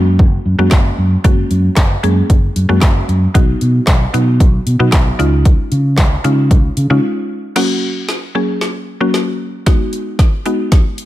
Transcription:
Already playing: fingered electric bass F#2, synth pluck G#3 A#3 C#4 F#4
0.19 fingered electric bass F#1, kick
0.45 fingered electric bass F#2
0.58 fingered electric bass F#2, synth pluck G#3 A#3 C#4 F#4
0.71 fingered electric bass F#1, kick, snare, clap
0.98 fingered electric bass F#2
1.24 fingered electric bass F#1, synth pluck G#3 A#3 C#4 F#4, kick, closed hi-hat
1.51 fingered electric bass F#2, closed hi-hat
1.76 fingered electric bass F#1, kick, snare, clap, closed hi-hat
2.03 fingered electric bass F#2, synth pluck G#3 A#3 C#4 G#4, closed hi-hat
2.30 fingered electric bass F#1, kick, closed hi-hat
2.56 fingered electric bass F#2, closed hi-hat
2.69 fingered electric bass F#2, synth pluck G#3 A#3 C#4 F#4
2.81 fingered electric bass F#1, kick, snare, clap, closed hi-hat
3.09 fingered electric bass F#2, closed hi-hat
3.34 fingered electric bass B1, synth pluck F#3 B3 D#4 F#4, kick, closed hi-hat
3.61 fingered electric bass B2, closed hi-hat
3.87 fingered electric bass B1, kick, snare, clap, closed hi-hat
4.14 fingered electric bass B2, synth pluck F#3 B3 D#4 F#4, closed hi-hat
4.40 fingered electric bass B1, kick, closed hi-hat
4.66 fingered electric bass B2, closed hi-hat
4.79 fingered electric bass B2, synth pluck F#3 B3 D#4 F#4
4.92 fingered electric bass B1, kick, snare, clap, closed hi-hat
5.19 fingered electric bass C#2, synth pluck G#3 C#4 D#4 F4, closed hi-hat
5.45 kick, closed hi-hat
5.72 fingered electric bass C#3, closed hi-hat
5.98 fingered electric bass C#2, kick, snare, clap, closed hi-hat
6.24 fingered electric bass C#3, synth pluck G#3 C#4 D#4 F4, closed hi-hat
6.51 fingered electric bass C#2, kick, closed hi-hat
6.77 fingered electric bass C#3, closed hi-hat
6.90 fingered electric bass C#3, synth pluck G#3 C#4 D#4 F4
7.56 synth pluck F#3 A#3 C#4 F#4, snare, crash
8.09 snare
8.35 synth pluck F#3 A#3 C#4 G#4
8.61 snare
9.01 synth pluck F#3 A#3 C#4 F#4
9.14 snare
9.66 synth pluck G#3 B3 D#4 F#4, kick, snare, closed hi-hat
9.93 closed hi-hat
10.19 kick, snare, closed hi-hat
10.45 synth pluck G#3 B3 D#4 F#4, closed hi-hat
10.72 kick, snare, closed hi-hat
10.98 closed hi-hat

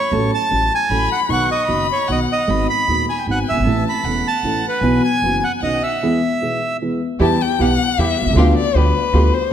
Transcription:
Already playing: bandoneon C#5, violin B5
0.12 upright bass A1, upright piano A1 A2 F#3 A3 C#4 A4, violin A5
0.34 bandoneon A5
0.50 upright piano A1 A2 F#3 A3 C#4 A4, upright bass A1
0.75 bandoneon G#5
0.89 upright bass A1, upright piano A1 A2 F#3 A3 C#4 A4, violin B5
1.12 bandoneon F#5
1.29 upright bass B1, upright piano B1 B2 D#3 F#3 B3 F#4, bandoneon F#5, violin C#6
1.51 bandoneon D#5
1.67 upright piano F#1 F#2 D#3 F#3 B3 F#4, upright bass F#1, violin B5
1.92 bandoneon C#5
2.08 upright bass B1, upright piano B1 B2 D#3 F#3 B3 F#4, bandoneon D#5, violin F#5
2.32 bandoneon D#5
2.48 upright bass G#1, upright piano G#1 G#2 D#3 G#3 B3 F#4, violin B5
2.70 bandoneon B5
2.88 upright piano D#1 D#2 D#3 G#3 B3 F#4, upright bass D#2
3.09 bandoneon G#5
3.19 violin G5
3.27 upright bass G#1, upright piano G#1 G#2 D#3 G#3 B3 F#4, violin G#5
3.31 bandoneon F#5
3.49 upright bass F#1, bandoneon E5
3.54 upright piano F#1 G1, upright bass G1
3.60 upright bass G#1, upright piano G#1
3.65 upright bass A1, upright piano A1 A2 E3 A3 C#4 A4, violin A5
3.89 bandoneon B5
4.03 upright bass E1, upright piano E1 E2 E3 A3 C#4 A4, violin F#5
4.27 bandoneon A5
4.43 upright bass A1, upright piano A1 A2 E3 A3 C#4 A4
4.68 bandoneon B4
4.81 upright bass B1, upright piano B1 B2 E3 F#3 B3 F#4, violin G#5
5.04 bandoneon G#5
5.22 upright bass F#1, upright piano F#1 F#2 E3 F#3 B3 F#4
5.44 bandoneon F#5
5.61 upright bass B1, upright piano B1 B2 D#3 B3 C#4 F#4, bandoneon D#5, violin F#5
5.83 bandoneon E5
6.03 upright piano E2 E3 G#3 B3 G#4
6.41 upright piano B1 B2 E3 G#3 B3 G#4
6.82 upright piano E2 E3 G#3 B3 G#4
7.20 upright bass E2, upright piano E2 E3 G3 B3 G4, string section B3 E4 G4, violin A5
7.41 violin G5
7.59 upright bass B1, upright piano B1 B2 E3 G3 B3 G4, string section B3 E4 G4, violin F#5
7.98 upright bass E2, upright piano E2 E3 G3 B3 G4, string section B3 E4 G4, violin E5
8.21 upright bass B1, upright piano B1
8.26 upright bass C2, upright piano C2
8.30 upright bass C#2, upright piano C#2
8.35 upright bass D2, upright piano D2 D3 G3 B3 F4, string section B3 F4 G4, violin F5
8.57 violin D5
8.75 upright bass D2, upright piano D2 D3 G3 B3 F4, string section B3 F4 G4, violin B4
9.13 upright bass D2, upright piano D2 D3 G3 B3 F4, string section B3 F4 G4
9.34 violin C5

